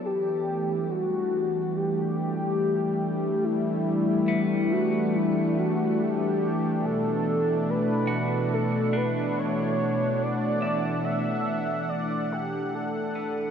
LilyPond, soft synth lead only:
\new Staff \with { instrumentName = "Soft synth lead" } { \time 4/4 \key b \minor \tempo 4 = 71 g'4 fis'4 g'2 | e'4. fis'8 e'8 fis'8 g'4 | a'4 b'4 a'8 b'8 cis''4 | d''4 e''4 d''8 g'8 a'4 | }